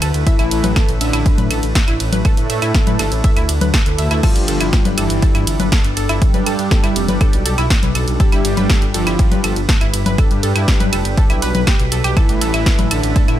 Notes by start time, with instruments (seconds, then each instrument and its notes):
Already playing: ambient pad A3 E4 B4
0.02 detuned saw bass D2, synth pluck A4 A5, closed hi-hat, ride, claves
0.14 detuned saw bass D2, closed hi-hat
0.27 supersaw synth E3, analog synth pad A3 E4 A4, ambient pad D4, soft synth lead E4, synth pluck E5 E6, kick, closed hi-hat, ride
0.39 detuned saw bass A1, synth pluck E4 E5, closed hi-hat, claves
0.51 detuned saw bass A1, closed hi-hat, ride
0.64 detuned saw bass A1, synth pluck B4 B5, closed hi-hat, low conga
0.76 synth pluck A4 A5, kick, snare, closed hi-hat, ride, claves
0.89 detuned saw bass A1, closed hi-hat
1.01 detuned saw bass A1, supersaw synth D3, soft synth lead D4, synth pluck E5 E6, closed hi-hat, ride
1.13 detuned saw bass A1, synth pluck E4 E5, closed hi-hat, claves
1.26 kick, closed hi-hat, ride
1.38 detuned saw bass A2, synth pluck B4 B5, closed hi-hat, low conga
1.51 detuned saw bass A1, analog synth pad A3 E4 A4, synth pluck A4 A5, closed hi-hat, ride, claves
1.63 detuned saw bass A1, closed hi-hat
1.75 synth pluck E5 E6, kick, snare, closed hi-hat, ride
1.88 detuned saw bass A1, synth pluck E4 E5, closed hi-hat, claves
2.00 detuned saw bass A1, closed hi-hat, ride
2.13 detuned saw bass A1, synth pluck B4 B5, closed hi-hat, low conga
2.25 analog synth pad A3 E4 A4, synth pluck A4 A5, kick, closed hi-hat, ride, claves
2.37 detuned saw bass A2, closed hi-hat
2.50 detuned saw bass A2, synth pluck E5 E6, closed hi-hat, ride
2.62 detuned saw bass A2, synth pluck E4 E5, closed hi-hat, claves
2.75 kick, snare, closed hi-hat, ride
2.87 detuned saw bass A2, synth pluck B4 B5, closed hi-hat, low conga
2.99 detuned saw bass G1, synth pluck A4 A5, snare, closed hi-hat, ride, claves
3.12 detuned saw bass A1, closed hi-hat
3.24 synth pluck E5 E6, kick, closed hi-hat, ride
3.37 detuned saw bass D2, synth pluck E4 E5, closed hi-hat, claves
3.49 detuned saw bass D2, closed hi-hat, ride
3.61 detuned saw bass D2, synth pluck B4 B5, closed hi-hat, low conga
3.74 synth pluck A4 A5, kick, snare, closed hi-hat, ride, claves
3.86 detuned saw bass D2, analog synth pad A3 E4 A4, closed hi-hat
3.98 detuned saw bass D2, synth pluck E5 E6, closed hi-hat, ride
4.11 detuned saw bass D2, synth pluck E4 E5, closed hi-hat, claves
4.23 supersaw synth F3, ambient pad G3 A4, analog synth pad G3 D4 G4, soft synth lead F4, synth pluck A4 A5, kick, closed hi-hat, crash, ride, claves
4.36 detuned saw bass G1, closed hi-hat
4.48 detuned saw bass G1, synth pluck A4 A5, closed hi-hat, ride
4.61 detuned saw bass G1, synth pluck E4 E5, closed hi-hat, claves
4.73 kick, snare, closed hi-hat, ride
4.85 detuned saw bass G1, synth pluck B4 B5, closed hi-hat, low conga
4.98 detuned saw bass G1, supersaw synth E3, soft synth lead E4, synth pluck A4 A5, closed hi-hat, ride, claves
5.10 detuned saw bass G1, closed hi-hat
5.22 synth pluck A4 A5, kick, closed hi-hat, ride
5.35 detuned saw bass G2, synth pluck E4 E5, closed hi-hat, claves
5.47 detuned saw bass G1, analog synth pad G3 D4 G4, closed hi-hat, ride
5.60 detuned saw bass G1, synth pluck B4 B5, closed hi-hat, low conga
5.72 synth pluck A4 A5, kick, snare, closed hi-hat, ride, claves
5.84 detuned saw bass G1, closed hi-hat
5.97 detuned saw bass G1, synth pluck A4 A5, closed hi-hat, ride
6.09 detuned saw bass G1, synth pluck E4 E5, closed hi-hat, claves
6.22 analog synth pad G3 D4 G4, kick, closed hi-hat, ride
6.34 detuned saw bass G2, synth pluck B4 B5, closed hi-hat, low conga
6.46 detuned saw bass G2, synth pluck A4 A5, closed hi-hat, ride, claves
6.59 detuned saw bass G2, closed hi-hat
6.71 synth pluck A4 A5, kick, snare, closed hi-hat, ride
6.84 detuned saw bass G2, synth pluck E4 E5, closed hi-hat, claves
6.96 detuned saw bass F1, closed hi-hat, ride
7.08 detuned saw bass G1, synth pluck B4 B5, closed hi-hat, low conga
7.21 synth pluck A4 A5, kick, closed hi-hat, ride, claves
7.33 detuned saw bass B1, closed hi-hat
7.46 detuned saw bass B1, analog synth pad G3 D4 G4, synth pluck A4 A5, closed hi-hat, ride
7.58 detuned saw bass B1, synth pluck E4 E5, closed hi-hat, claves
7.70 kick, snare, closed hi-hat, ride
7.83 detuned saw bass B1, synth pluck B4 B5, closed hi-hat, low conga
7.95 detuned saw bass B1, synth pluck A4 A5, closed hi-hat, ride, claves
8.08 detuned saw bass B1, closed hi-hat
8.20 analog synth pad G3 D4 G4, supersaw synth G3, soft synth lead G4, synth pluck A4 A5, ambient pad B4, kick, closed hi-hat, ride
8.32 detuned saw bass G1, synth pluck E4 E5, closed hi-hat, claves
8.45 detuned saw bass G1, closed hi-hat, ride
8.57 detuned saw bass G1, synth pluck B4 B5, closed hi-hat, low conga
8.70 synth pluck A4 A5, kick, snare, closed hi-hat, ride, claves
8.82 detuned saw bass G1, closed hi-hat
8.94 detuned saw bass G1, supersaw synth F3, soft synth lead F4, synth pluck A4 A5, closed hi-hat, ride
9.07 detuned saw bass G1, synth pluck E4 E5, closed hi-hat, claves
9.19 kick, closed hi-hat, ride
9.32 detuned saw bass G2, synth pluck B4 B5, closed hi-hat, low conga
9.44 detuned saw bass G1, analog synth pad G3 D4 G4, synth pluck A4 A5, closed hi-hat, ride, claves
9.56 detuned saw bass G1, closed hi-hat
9.69 synth pluck A4 A5, kick, snare, closed hi-hat, ride
9.81 detuned saw bass G1, synth pluck E4 E5, closed hi-hat, claves
9.94 detuned saw bass G1, closed hi-hat, ride
10.06 detuned saw bass G1, synth pluck B4 B5, closed hi-hat, low conga
10.18 analog synth pad G3 D4 G4, synth pluck A4 A5, kick, closed hi-hat, ride, claves
10.31 detuned saw bass G2, closed hi-hat
10.43 detuned saw bass G2, synth pluck A4 A5, closed hi-hat, ride
10.55 detuned saw bass G2, synth pluck E4 E5, closed hi-hat, claves
10.68 kick, snare, closed hi-hat, ride
10.80 detuned saw bass G2, synth pluck B4 B5, closed hi-hat, low conga
10.93 detuned saw bass F1, synth pluck A4 A5, closed hi-hat, ride, claves
11.05 detuned saw bass G1, closed hi-hat
11.17 synth pluck A4 A5, kick, closed hi-hat, ride
11.30 detuned saw bass B1, synth pluck E4 E5, closed hi-hat, claves
11.42 detuned saw bass B1, analog synth pad G3 D4 G4, synth pluck B4 B5, closed hi-hat, ride
11.55 detuned saw bass B1, synth pluck B4 B5, closed hi-hat, low conga
11.67 synth pluck G4 G5, kick, snare, closed hi-hat, ride, claves
11.79 detuned saw bass B1, closed hi-hat
11.92 detuned saw bass B1, synth pluck A4 A5, closed hi-hat, ride
12.04 detuned saw bass B1, synth pluck G4 G5, closed hi-hat, claves
12.17 supersaw synth E3, ambient pad A3 E4, analog synth pad A3 E4 A4, soft synth lead E4, synth pluck A4 A5, kick, closed hi-hat, ride, claves
12.29 detuned saw bass A1, closed hi-hat
12.41 detuned saw bass A1, synth pluck A4 A5, closed hi-hat, ride
12.54 detuned saw bass A1, synth pluck E4 E5, closed hi-hat, claves
12.66 kick, snare, closed hi-hat, ride
12.79 detuned saw bass A1, synth pluck B4 B5, closed hi-hat, low conga
12.91 detuned saw bass A1, supersaw synth D3, soft synth lead D4, synth pluck A4 A5, closed hi-hat, ride, claves
13.03 detuned saw bass A1, closed hi-hat
13.16 synth pluck A4 A5, kick, closed hi-hat, ride
13.28 detuned saw bass A2, synth pluck E4 E5, closed hi-hat, claves